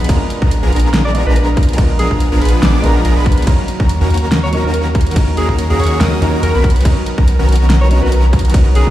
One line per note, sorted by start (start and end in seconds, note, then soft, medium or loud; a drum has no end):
0.04 1.11 G#3 medium
0.04 1.12 B3 medium
0.04 closed hi-hat medium
0.09 0.17 A#1 loud
0.09 0.19 F3 loud
0.09 0.19 B3 medium
0.09 0.19 D4 medium
0.09 1.13 D4 medium
0.09 1.13 F4 medium
0.09 0.19 G#4 medium
0.09 0.19 A#4 loud
0.09 1.14 A#4 loud
0.09 0.19 A#5 loud
0.09 kick loud
0.09 closed hi-hat medium
0.09 crash soft
0.30 closed hi-hat medium
0.42 0.61 A#1 loud
0.42 0.50 F3 loud
0.42 0.50 B3 medium
0.42 0.50 D4 medium
0.42 0.50 G#4 medium
0.42 0.50 A#4 loud
0.42 0.50 A#5 loud
0.42 kick loud
0.51 closed hi-hat medium
0.63 0.71 A#1 loud
0.63 0.70 F3 medium
0.63 0.70 B3 medium
0.63 0.70 D4 medium
0.63 0.70 G#4 medium
0.63 0.70 A#4 medium
0.63 0.70 A#5 medium
0.72 1.24 A#1 loud
0.72 1.24 F3 medium
0.72 1.24 B3 medium
0.72 1.24 D4 medium
0.72 1.24 G#4 medium
0.72 1.24 A#4 loud
0.72 1.24 A#5 medium
0.72 closed hi-hat soft
0.76 closed hi-hat medium
0.80 closed hi-hat medium
0.94 snare loud
0.94 closed hi-hat medium
1.05 1.11 D5 medium
1.13 1.75 G#3 medium
1.13 1.75 B3 medium
1.13 1.76 D4 medium
1.13 1.76 F4 medium
1.13 1.22 D5 medium
1.13 closed hi-hat medium
1.17 1.77 A#4 loud
1.26 2.09 A#1 medium
1.26 2.08 F3 medium
1.26 2.08 B3 medium
1.26 2.08 D4 medium
1.26 2.08 G#4 medium
1.26 2.08 A#4 loud
1.26 1.33 B4 loud
1.26 2.08 A#5 loud
1.36 1.43 B4 medium
1.36 closed hi-hat medium
1.57 kick loud
1.57 closed hi-hat soft
1.63 closed hi-hat medium
1.69 closed hi-hat soft
1.73 2.80 G#3 medium
1.73 2.81 B3 medium
1.73 closed hi-hat medium
1.78 2.82 D4 medium
1.78 2.82 F4 medium
1.78 2.83 A#4 medium
1.78 kick loud
1.78 closed hi-hat medium
1.78 crash soft
1.99 2.17 G#4 medium
1.99 closed hi-hat medium
2.11 2.30 A#1 loud
2.11 2.24 F3 loud
2.11 2.24 B3 medium
2.11 2.24 D4 medium
2.11 2.24 G#4 medium
2.11 2.25 A#5 loud
2.11 kick medium
2.20 closed hi-hat medium
2.32 2.40 A#1 loud
2.32 2.39 F3 loud
2.32 2.39 B3 medium
2.32 2.39 D4 medium
2.32 2.39 G#4 medium
2.32 2.39 A#4 loud
2.32 2.39 A#5 loud
2.42 2.61 A#1 loud
2.42 2.60 F3 medium
2.42 2.60 B3 medium
2.42 2.60 D4 medium
2.42 2.60 G#4 medium
2.42 2.60 B4 medium
2.42 2.60 B5 medium
2.42 closed hi-hat soft
2.45 closed hi-hat medium
2.49 closed hi-hat medium
2.63 2.82 A#1 loud
2.63 2.81 F3 medium
2.63 2.82 B3 medium
2.63 2.82 D4 medium
2.63 2.82 G#4 medium
2.63 2.82 D5 loud
2.63 2.82 D6 loud
2.63 snare loud
2.63 closed hi-hat medium
2.82 3.03 A#1 loud
2.82 3.03 F3 medium
2.82 3.44 G#3 medium
2.82 3.44 B3 medium
2.82 3.03 B3 medium
2.82 3.45 D4 medium
2.82 3.03 D4 medium
2.82 3.45 F4 medium
2.82 3.03 G#4 medium
2.82 3.03 A#4 loud
2.82 3.46 A#4 loud
2.82 3.03 A#5 loud
2.82 closed hi-hat medium
3.05 3.14 A#1 loud
3.05 3.14 F3 medium
3.05 3.14 B3 medium
3.05 3.14 D4 medium
3.05 3.14 G#4 medium
3.05 3.14 A#4 loud
3.05 3.14 A#5 loud
3.05 closed hi-hat medium
3.17 3.45 A#1 loud
3.17 3.45 F3 medium
3.17 3.45 B3 medium
3.17 3.45 D4 medium
3.17 3.45 G#4 medium
3.17 3.45 B4 medium
3.17 3.45 B5 loud
3.26 kick loud
3.26 closed hi-hat soft
3.32 closed hi-hat medium
3.38 closed hi-hat soft
3.42 4.49 F#3 medium
3.42 4.50 A#3 medium
3.42 closed hi-hat medium
3.47 3.55 D#2 loud
3.47 3.57 D#3 loud
3.47 3.57 A#3 medium
3.47 4.50 C#4 medium
3.47 3.57 C#4 medium
3.47 4.51 D#4 medium
3.47 3.57 F#4 medium
3.47 3.57 A#4 loud
3.47 4.51 A#4 medium
3.47 3.57 A#5 loud
3.47 kick loud
3.47 closed hi-hat medium
3.47 crash soft
3.68 closed hi-hat medium
3.80 3.99 D#2 loud
3.80 3.88 D#3 medium
3.80 3.88 A#3 medium
3.80 3.88 C#4 medium
3.80 3.88 F#4 medium
3.80 3.88 A#4 loud
3.80 3.88 A#5 loud
3.80 kick loud
3.89 closed hi-hat medium
4.01 4.09 D#2 medium
4.01 4.08 D#3 medium
4.01 4.08 A#3 medium
4.01 4.08 C#4 medium
4.01 4.08 F#4 medium
4.01 4.08 A#4 medium
4.01 4.08 A#5 medium
4.10 4.62 D#2 loud
4.10 4.62 D#3 medium
4.10 4.62 A#3 medium
4.10 4.62 C#4 medium
4.10 4.62 F#4 medium
4.10 4.62 A#4 medium
4.10 4.62 A#5 medium
4.10 closed hi-hat soft
4.14 closed hi-hat medium
4.17 closed hi-hat medium
4.32 snare loud
4.32 closed hi-hat medium
4.43 4.49 C#5 medium
4.51 5.13 F#3 medium
4.51 5.13 A#3 medium
4.51 5.14 C#4 medium
4.51 5.14 D#4 medium
4.51 5.15 A#4 loud
4.51 4.60 C#5 medium
4.51 closed hi-hat medium
4.64 5.47 D#2 loud
4.64 5.46 D#3 loud
4.64 5.46 A#3 medium
4.64 5.46 C#4 medium
4.64 5.46 F#4 medium
4.64 4.70 A#4 medium
4.64 5.46 A#4 loud
4.64 5.46 A#5 loud
4.74 4.81 A#4 medium
4.74 closed hi-hat medium
4.95 kick loud
4.95 closed hi-hat soft
5.01 closed hi-hat medium
5.07 closed hi-hat soft
5.11 6.18 F#3 medium
5.11 6.19 A#3 medium
5.11 closed hi-hat medium
5.16 6.19 C#4 medium
5.16 6.20 D#4 medium
5.16 6.20 A#4 medium
5.16 kick loud
5.16 closed hi-hat medium
5.16 crash soft
5.37 5.55 G#4 medium
5.37 closed hi-hat medium
5.49 5.68 D#2 medium
5.49 5.63 D#3 medium
5.49 5.62 A#3 medium
5.49 5.63 C#4 medium
5.49 5.62 F#4 medium
5.49 5.62 A#4 loud
5.49 5.63 A#5 loud
5.49 kick medium
5.59 closed hi-hat medium
5.70 5.78 D#2 medium
5.70 5.77 D#3 loud
5.70 5.77 A#3 medium
5.70 5.77 C#4 medium
5.70 5.77 F#4 medium
5.70 5.99 G#4 loud
5.70 5.77 A#4 loud
5.70 5.77 A#5 loud
5.79 5.99 D#2 loud
5.79 5.98 D#3 medium
5.79 5.98 A#3 medium
5.79 5.98 C#4 medium
5.79 5.98 F#4 medium
5.79 5.98 C#5 medium
5.79 5.99 C#6 medium
5.79 closed hi-hat soft
5.83 closed hi-hat medium
5.87 closed hi-hat medium
6.00 6.20 D#2 medium
6.00 6.20 D#3 medium
6.00 6.20 A#3 medium
6.00 6.20 C#4 medium
6.00 6.20 F#4 medium
6.00 6.08 A#4 medium
6.00 6.20 D#5 loud
6.00 6.20 D#6 loud
6.00 snare loud
6.00 closed hi-hat medium
6.12 6.18 A#4 medium
6.21 6.41 D#2 loud
6.21 6.41 D#3 medium
6.21 6.62 F#3 medium
6.21 6.63 A#3 medium
6.21 6.41 A#3 medium
6.21 6.63 C#4 medium
6.21 6.41 C#4 medium
6.21 6.63 D#4 medium
6.21 6.41 F#4 medium
6.21 6.41 A#4 loud
6.21 6.63 A#4 loud
6.21 6.41 A#5 loud
6.21 closed hi-hat medium
6.43 6.52 D#2 loud
6.43 6.52 D#3 medium
6.43 6.52 A#3 medium
6.43 6.52 C#4 medium
6.43 6.52 F#4 medium
6.43 6.52 A#4 loud
6.43 6.69 A#4 loud
6.43 6.52 A#5 loud
6.43 closed hi-hat medium
6.55 6.83 B1 medium
6.55 6.83 D#3 medium
6.55 6.83 B3 medium
6.55 6.83 C#4 medium
6.55 6.83 F#4 medium
6.55 6.83 B4 medium
6.55 6.83 B5 loud
6.64 kick loud
6.64 closed hi-hat soft
6.70 closed hi-hat medium
6.76 closed hi-hat soft
6.81 7.87 F#3 medium
6.81 7.88 B3 medium
6.81 closed hi-hat medium
6.85 6.93 B1 loud
6.85 6.95 D#3 loud
6.85 6.95 B3 medium
6.85 7.89 C#4 medium
6.85 6.95 C#4 medium
6.85 7.89 D#4 medium
6.85 6.95 F#4 medium
6.85 6.95 A#4 loud
6.85 7.90 A#4 medium
6.85 6.95 A#5 loud
6.85 kick loud
6.85 closed hi-hat medium
6.85 crash medium
7.06 closed hi-hat medium
7.18 7.37 B1 medium
7.18 7.26 D#3 medium
7.18 7.26 B3 medium
7.18 7.26 C#4 medium
7.18 7.26 F#4 medium
7.18 7.26 A#4 loud
7.18 7.26 A#5 loud
7.18 kick loud
7.28 closed hi-hat medium
7.39 7.47 B1 loud
7.39 7.46 D#3 medium
7.39 7.46 B3 medium
7.39 7.46 C#4 medium
7.39 7.46 F#4 medium
7.39 7.46 A#4 medium
7.39 7.46 A#5 medium
7.49 8.00 B1 loud
7.49 8.00 D#3 medium
7.49 8.00 B3 medium
7.49 8.00 C#4 medium
7.49 8.00 F#4 medium
7.49 8.00 A#4 medium
7.49 8.00 A#5 medium
7.49 closed hi-hat soft
7.52 closed hi-hat medium
7.56 closed hi-hat medium
7.70 snare loud
7.70 closed hi-hat medium
7.81 7.87 C#5 medium
7.89 8.51 F#3 loud
7.89 8.51 B3 medium
7.89 8.52 C#4 medium
7.89 8.52 D#4 medium
7.89 7.98 C#5 medium
7.89 closed hi-hat medium
7.93 8.53 A#4 loud
8.03 8.85 B1 loud
8.03 8.84 D#3 medium
8.03 8.84 B3 medium
8.03 8.84 C#4 medium
8.03 8.84 F#4 medium
8.03 8.84 A#4 loud
8.03 8.09 B4 medium
8.03 8.84 A#5 loud
8.12 8.20 B4 medium
8.12 closed hi-hat medium
8.33 kick loud
8.33 closed hi-hat medium
8.39 closed hi-hat medium
8.45 closed hi-hat medium
8.50 8.90 F#3 medium
8.50 8.90 B3 medium
8.50 closed hi-hat medium
8.54 8.90 C#4 medium
8.54 8.90 D#4 medium
8.54 8.90 A#4 medium
8.54 kick loud
8.54 closed hi-hat medium
8.54 crash soft
8.75 8.90 G#4 loud
8.75 closed hi-hat medium
8.87 8.90 B1 loud
8.87 8.90 D#3 medium
8.87 8.90 B3 medium
8.87 8.90 C#4 medium
8.87 8.90 F#4 medium
8.87 8.90 A#4 loud
8.87 8.90 A#5 loud
8.87 kick medium